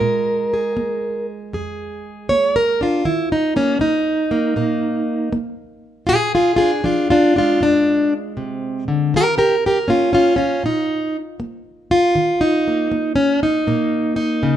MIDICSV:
0, 0, Header, 1, 2, 480
1, 0, Start_track
1, 0, Tempo, 760456
1, 2, Time_signature, 4, 2, 24, 8
1, 9195, End_track
2, 0, Start_track
2, 0, Title_t, "Steel-string acoustic guitar"
2, 0, Program_c, 0, 25
2, 0, Note_on_c, 0, 56, 41
2, 0, Note_on_c, 0, 70, 91
2, 6, Note_on_c, 0, 46, 69
2, 338, Note_on_c, 0, 68, 43
2, 453, Note_off_c, 0, 46, 0
2, 484, Note_on_c, 0, 58, 59
2, 794, Note_off_c, 0, 70, 0
2, 932, Note_off_c, 0, 58, 0
2, 966, Note_off_c, 0, 68, 0
2, 968, Note_on_c, 0, 41, 68
2, 974, Note_on_c, 0, 68, 51
2, 1414, Note_off_c, 0, 41, 0
2, 1447, Note_on_c, 0, 73, 91
2, 1455, Note_on_c, 0, 58, 63
2, 1605, Note_off_c, 0, 73, 0
2, 1608, Note_off_c, 0, 68, 0
2, 1615, Note_on_c, 0, 70, 83
2, 1766, Note_off_c, 0, 56, 0
2, 1769, Note_off_c, 0, 70, 0
2, 1774, Note_on_c, 0, 62, 46
2, 1784, Note_on_c, 0, 65, 91
2, 1898, Note_off_c, 0, 58, 0
2, 1908, Note_off_c, 0, 62, 0
2, 1926, Note_on_c, 0, 51, 74
2, 1927, Note_on_c, 0, 64, 80
2, 1933, Note_off_c, 0, 65, 0
2, 2084, Note_off_c, 0, 64, 0
2, 2096, Note_on_c, 0, 63, 86
2, 2248, Note_off_c, 0, 63, 0
2, 2248, Note_on_c, 0, 58, 45
2, 2251, Note_on_c, 0, 61, 87
2, 2373, Note_off_c, 0, 51, 0
2, 2392, Note_off_c, 0, 58, 0
2, 2395, Note_on_c, 0, 58, 60
2, 2402, Note_off_c, 0, 61, 0
2, 2405, Note_on_c, 0, 63, 90
2, 2714, Note_off_c, 0, 58, 0
2, 2721, Note_on_c, 0, 58, 48
2, 2879, Note_on_c, 0, 46, 70
2, 2881, Note_off_c, 0, 58, 0
2, 2883, Note_on_c, 0, 58, 51
2, 3329, Note_off_c, 0, 46, 0
2, 3359, Note_off_c, 0, 58, 0
2, 3361, Note_on_c, 0, 58, 64
2, 3364, Note_off_c, 0, 63, 0
2, 3811, Note_off_c, 0, 58, 0
2, 3829, Note_on_c, 0, 65, 84
2, 3843, Note_on_c, 0, 68, 98
2, 3850, Note_on_c, 0, 46, 71
2, 3887, Note_off_c, 0, 65, 0
2, 4003, Note_off_c, 0, 68, 0
2, 4007, Note_on_c, 0, 65, 76
2, 4011, Note_on_c, 0, 68, 88
2, 4111, Note_off_c, 0, 65, 0
2, 4143, Note_on_c, 0, 65, 75
2, 4145, Note_off_c, 0, 68, 0
2, 4153, Note_on_c, 0, 68, 84
2, 4166, Note_on_c, 0, 62, 45
2, 4233, Note_off_c, 0, 65, 0
2, 4295, Note_off_c, 0, 46, 0
2, 4310, Note_off_c, 0, 62, 0
2, 4317, Note_on_c, 0, 53, 58
2, 4318, Note_off_c, 0, 68, 0
2, 4318, Note_on_c, 0, 62, 64
2, 4327, Note_on_c, 0, 65, 78
2, 4476, Note_off_c, 0, 65, 0
2, 4480, Note_off_c, 0, 62, 0
2, 4484, Note_on_c, 0, 65, 90
2, 4491, Note_on_c, 0, 62, 77
2, 4639, Note_off_c, 0, 62, 0
2, 4643, Note_off_c, 0, 65, 0
2, 4647, Note_on_c, 0, 62, 66
2, 4655, Note_on_c, 0, 56, 44
2, 4661, Note_on_c, 0, 65, 78
2, 4768, Note_off_c, 0, 53, 0
2, 4801, Note_on_c, 0, 41, 65
2, 4805, Note_off_c, 0, 62, 0
2, 4812, Note_off_c, 0, 65, 0
2, 4815, Note_on_c, 0, 62, 98
2, 5131, Note_off_c, 0, 62, 0
2, 5250, Note_off_c, 0, 41, 0
2, 5282, Note_on_c, 0, 48, 60
2, 5603, Note_off_c, 0, 48, 0
2, 5605, Note_on_c, 0, 50, 58
2, 5762, Note_off_c, 0, 50, 0
2, 5767, Note_off_c, 0, 56, 0
2, 5771, Note_on_c, 0, 51, 74
2, 5783, Note_on_c, 0, 67, 84
2, 5786, Note_on_c, 0, 70, 92
2, 5824, Note_off_c, 0, 67, 0
2, 5916, Note_off_c, 0, 70, 0
2, 5919, Note_on_c, 0, 67, 75
2, 5924, Note_on_c, 0, 70, 80
2, 6027, Note_off_c, 0, 67, 0
2, 6083, Note_off_c, 0, 70, 0
2, 6099, Note_on_c, 0, 67, 73
2, 6106, Note_on_c, 0, 70, 84
2, 6171, Note_off_c, 0, 67, 0
2, 6215, Note_off_c, 0, 51, 0
2, 6235, Note_on_c, 0, 61, 70
2, 6242, Note_on_c, 0, 58, 62
2, 6248, Note_on_c, 0, 65, 80
2, 6254, Note_off_c, 0, 70, 0
2, 6385, Note_off_c, 0, 61, 0
2, 6393, Note_on_c, 0, 61, 76
2, 6396, Note_off_c, 0, 65, 0
2, 6404, Note_on_c, 0, 65, 89
2, 6533, Note_off_c, 0, 61, 0
2, 6541, Note_on_c, 0, 61, 71
2, 6544, Note_off_c, 0, 65, 0
2, 6551, Note_on_c, 0, 65, 80
2, 6690, Note_off_c, 0, 58, 0
2, 6711, Note_off_c, 0, 61, 0
2, 6713, Note_on_c, 0, 46, 66
2, 6716, Note_off_c, 0, 65, 0
2, 6727, Note_on_c, 0, 63, 94
2, 7046, Note_off_c, 0, 63, 0
2, 7165, Note_off_c, 0, 46, 0
2, 7194, Note_on_c, 0, 58, 62
2, 7519, Note_on_c, 0, 65, 105
2, 7645, Note_off_c, 0, 58, 0
2, 7671, Note_on_c, 0, 51, 74
2, 7832, Note_on_c, 0, 63, 87
2, 7839, Note_off_c, 0, 65, 0
2, 8001, Note_on_c, 0, 58, 45
2, 8124, Note_off_c, 0, 51, 0
2, 8150, Note_off_c, 0, 58, 0
2, 8152, Note_on_c, 0, 58, 60
2, 8301, Note_off_c, 0, 63, 0
2, 8304, Note_on_c, 0, 61, 83
2, 8471, Note_off_c, 0, 61, 0
2, 8477, Note_on_c, 0, 63, 75
2, 8604, Note_off_c, 0, 58, 0
2, 8629, Note_on_c, 0, 46, 66
2, 8632, Note_on_c, 0, 58, 52
2, 8932, Note_off_c, 0, 63, 0
2, 8939, Note_on_c, 0, 63, 101
2, 9082, Note_off_c, 0, 46, 0
2, 9107, Note_on_c, 0, 49, 64
2, 9195, Note_off_c, 0, 49, 0
2, 9195, Note_off_c, 0, 58, 0
2, 9195, Note_off_c, 0, 63, 0
2, 9195, End_track
0, 0, End_of_file